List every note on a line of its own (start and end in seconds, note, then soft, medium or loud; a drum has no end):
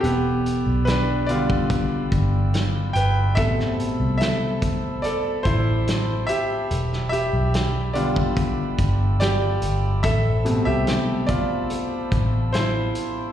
0.00 0.62 E1 medium
0.00 0.88 G4 medium
0.00 3.33 D5 medium
0.00 3.33 G5 medium
0.00 3.33 B5 medium
0.00 3.33 E6 medium
0.00 closed hi-hat medium
0.04 0.83 B3 medium
0.46 closed hi-hat medium
0.66 2.08 B1 medium
0.85 1.27 D4 medium
0.85 1.29 B4 medium
0.85 snare medium
0.85 closed hi-hat medium
1.26 3.33 D3 medium
1.26 3.33 G3 soft
1.26 3.34 B3 medium
1.26 2.99 D5 medium
1.26 closed hi-hat medium
1.30 2.92 F4 medium
1.50 kick medium
1.70 kick medium
1.70 closed hi-hat medium
2.12 2.91 G1 medium
2.12 kick medium
2.12 closed hi-hat medium
2.54 snare loud
2.54 closed hi-hat medium
2.93 3.37 G1 medium
2.93 3.35 B4 medium
2.93 3.37 G5 medium
2.93 closed hi-hat medium
3.35 3.95 A1 medium
3.35 6.67 B2 medium
3.35 6.66 C3 soft
3.35 6.67 A3 soft
3.35 4.17 A4 medium
3.35 6.67 C5 medium
3.35 4.16 E5 medium
3.35 6.67 A5 medium
3.35 13.32 B5 medium
3.35 6.67 E6 medium
3.35 kick medium
3.35 closed hi-hat medium
3.60 snare soft
3.80 closed hi-hat medium
4.00 5.41 C2 medium
4.18 5.00 A4 medium
4.18 5.05 E5 medium
4.18 closed hi-hat medium
4.22 snare loud
4.62 kick medium
4.62 closed hi-hat medium
5.02 5.43 A4 medium
5.02 5.46 D5 medium
5.02 closed hi-hat medium
5.43 6.25 A1 medium
5.43 6.25 E4 medium
5.43 6.30 C5 medium
5.43 kick medium
5.43 closed hi-hat medium
5.87 snare loud
5.87 closed hi-hat medium
6.27 7.08 G4 medium
6.27 7.08 E5 medium
6.27 closed hi-hat medium
6.70 7.29 E1 medium
6.70 10.00 D5 medium
6.70 10.00 G5 medium
6.70 13.32 E6 medium
6.70 closed hi-hat medium
6.93 snare soft
7.09 7.91 G4 medium
7.09 7.96 E5 medium
7.09 closed hi-hat medium
7.33 8.75 B1 medium
7.54 snare medium
7.54 closed hi-hat medium
7.93 9.99 D3 soft
7.93 9.99 G3 soft
7.93 10.00 B3 medium
7.93 8.75 F4 medium
7.93 8.74 D5 medium
7.93 closed hi-hat medium
8.16 kick medium
8.37 kick medium
8.37 closed hi-hat medium
8.79 9.58 G1 medium
8.79 kick medium
8.79 closed hi-hat medium
9.20 10.00 G4 medium
9.20 10.06 D5 medium
9.20 snare loud
9.20 closed hi-hat medium
9.62 10.00 G1 medium
9.62 closed hi-hat medium
10.03 10.62 A1 medium
10.03 10.62 A4 medium
10.03 13.32 C5 medium
10.03 10.64 E5 medium
10.03 13.32 A5 medium
10.03 kick loud
10.03 closed hi-hat medium
10.45 13.32 B2 medium
10.45 13.32 C3 medium
10.45 13.32 A3 soft
10.45 closed hi-hat medium
10.65 12.08 C2 medium
10.65 11.25 G4 medium
10.65 11.24 E5 medium
10.87 snare medium
10.87 closed hi-hat medium
11.27 12.50 F4 medium
11.27 12.48 D5 medium
11.27 kick medium
11.27 closed hi-hat medium
11.70 closed hi-hat medium
12.12 12.91 A1 medium
12.12 kick medium
12.12 closed hi-hat medium
12.53 13.32 E4 medium
12.53 13.32 C5 medium
12.53 snare loud
12.53 closed hi-hat medium
12.95 closed hi-hat medium